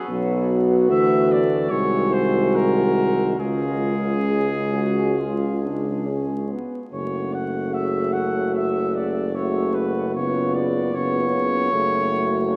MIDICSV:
0, 0, Header, 1, 6, 480
1, 0, Start_track
1, 0, Key_signature, 3, "minor"
1, 0, Tempo, 805369
1, 56, Time_signature, 4, 2, 24, 8
1, 1017, Tempo, 840336
1, 1977, Tempo, 884956
1, 3897, Tempo, 806452
1, 5817, Tempo, 775194
1, 7309, End_track
2, 0, Start_track
2, 0, Title_t, "Flugelhorn"
2, 0, Program_c, 0, 56
2, 0, Note_on_c, 0, 68, 93
2, 62, Note_off_c, 0, 68, 0
2, 539, Note_on_c, 0, 76, 99
2, 785, Note_on_c, 0, 74, 81
2, 794, Note_off_c, 0, 76, 0
2, 1020, Note_on_c, 0, 73, 96
2, 1029, Note_off_c, 0, 74, 0
2, 1258, Note_on_c, 0, 72, 82
2, 1267, Note_off_c, 0, 73, 0
2, 1501, Note_on_c, 0, 70, 86
2, 1509, Note_off_c, 0, 72, 0
2, 1979, Note_off_c, 0, 70, 0
2, 1983, Note_on_c, 0, 68, 85
2, 3645, Note_off_c, 0, 68, 0
2, 3901, Note_on_c, 0, 73, 66
2, 4141, Note_on_c, 0, 78, 72
2, 4150, Note_off_c, 0, 73, 0
2, 4378, Note_on_c, 0, 76, 74
2, 4387, Note_off_c, 0, 78, 0
2, 4612, Note_on_c, 0, 78, 73
2, 4621, Note_off_c, 0, 76, 0
2, 4852, Note_off_c, 0, 78, 0
2, 4860, Note_on_c, 0, 76, 74
2, 5101, Note_on_c, 0, 74, 64
2, 5109, Note_off_c, 0, 76, 0
2, 5339, Note_on_c, 0, 73, 68
2, 5348, Note_off_c, 0, 74, 0
2, 5575, Note_on_c, 0, 71, 65
2, 5584, Note_off_c, 0, 73, 0
2, 5810, Note_off_c, 0, 71, 0
2, 5814, Note_on_c, 0, 73, 75
2, 6060, Note_on_c, 0, 74, 74
2, 6069, Note_off_c, 0, 73, 0
2, 6309, Note_on_c, 0, 73, 93
2, 6318, Note_off_c, 0, 74, 0
2, 7309, Note_off_c, 0, 73, 0
2, 7309, End_track
3, 0, Start_track
3, 0, Title_t, "French horn section"
3, 0, Program_c, 1, 60
3, 54, Note_on_c, 1, 66, 82
3, 996, Note_off_c, 1, 66, 0
3, 1015, Note_on_c, 1, 66, 75
3, 1957, Note_off_c, 1, 66, 0
3, 1978, Note_on_c, 1, 65, 60
3, 2408, Note_off_c, 1, 65, 0
3, 2457, Note_on_c, 1, 68, 70
3, 2683, Note_off_c, 1, 68, 0
3, 2700, Note_on_c, 1, 66, 75
3, 2946, Note_off_c, 1, 66, 0
3, 2949, Note_on_c, 1, 65, 70
3, 3190, Note_off_c, 1, 65, 0
3, 3191, Note_on_c, 1, 62, 59
3, 3422, Note_off_c, 1, 62, 0
3, 3427, Note_on_c, 1, 61, 55
3, 3664, Note_off_c, 1, 61, 0
3, 3667, Note_on_c, 1, 59, 52
3, 3829, Note_off_c, 1, 59, 0
3, 3899, Note_on_c, 1, 66, 56
3, 5316, Note_off_c, 1, 66, 0
3, 5345, Note_on_c, 1, 66, 57
3, 5811, Note_off_c, 1, 66, 0
3, 5829, Note_on_c, 1, 65, 56
3, 6303, Note_off_c, 1, 65, 0
3, 6311, Note_on_c, 1, 65, 54
3, 6775, Note_off_c, 1, 65, 0
3, 6782, Note_on_c, 1, 66, 68
3, 7309, Note_off_c, 1, 66, 0
3, 7309, End_track
4, 0, Start_track
4, 0, Title_t, "Euphonium"
4, 0, Program_c, 2, 58
4, 51, Note_on_c, 2, 59, 78
4, 531, Note_on_c, 2, 57, 73
4, 540, Note_off_c, 2, 59, 0
4, 1015, Note_off_c, 2, 57, 0
4, 1019, Note_on_c, 2, 56, 68
4, 1959, Note_off_c, 2, 56, 0
4, 1974, Note_on_c, 2, 56, 61
4, 3694, Note_off_c, 2, 56, 0
4, 3904, Note_on_c, 2, 57, 56
4, 5319, Note_off_c, 2, 57, 0
4, 5344, Note_on_c, 2, 57, 52
4, 5825, Note_on_c, 2, 59, 54
4, 5834, Note_off_c, 2, 57, 0
4, 6301, Note_off_c, 2, 59, 0
4, 6304, Note_on_c, 2, 59, 66
4, 6783, Note_on_c, 2, 57, 67
4, 6793, Note_off_c, 2, 59, 0
4, 7309, Note_off_c, 2, 57, 0
4, 7309, End_track
5, 0, Start_track
5, 0, Title_t, "Trombone"
5, 0, Program_c, 3, 57
5, 57, Note_on_c, 3, 54, 72
5, 512, Note_off_c, 3, 54, 0
5, 536, Note_on_c, 3, 52, 72
5, 1015, Note_on_c, 3, 51, 68
5, 1024, Note_off_c, 3, 52, 0
5, 1976, Note_off_c, 3, 51, 0
5, 1981, Note_on_c, 3, 49, 65
5, 3697, Note_off_c, 3, 49, 0
5, 3896, Note_on_c, 3, 49, 57
5, 5315, Note_off_c, 3, 49, 0
5, 5341, Note_on_c, 3, 49, 53
5, 5809, Note_off_c, 3, 49, 0
5, 5821, Note_on_c, 3, 49, 60
5, 6298, Note_off_c, 3, 49, 0
5, 6311, Note_on_c, 3, 49, 54
5, 6775, Note_off_c, 3, 49, 0
5, 6785, Note_on_c, 3, 49, 61
5, 7309, Note_off_c, 3, 49, 0
5, 7309, End_track
6, 0, Start_track
6, 0, Title_t, "Tuba"
6, 0, Program_c, 4, 58
6, 57, Note_on_c, 4, 35, 75
6, 539, Note_on_c, 4, 38, 68
6, 548, Note_off_c, 4, 35, 0
6, 1015, Note_off_c, 4, 38, 0
6, 1019, Note_on_c, 4, 36, 69
6, 1959, Note_off_c, 4, 36, 0
6, 1978, Note_on_c, 4, 37, 66
6, 3696, Note_off_c, 4, 37, 0
6, 3903, Note_on_c, 4, 30, 57
6, 6760, Note_off_c, 4, 30, 0
6, 6789, Note_on_c, 4, 30, 67
6, 7309, Note_off_c, 4, 30, 0
6, 7309, End_track
0, 0, End_of_file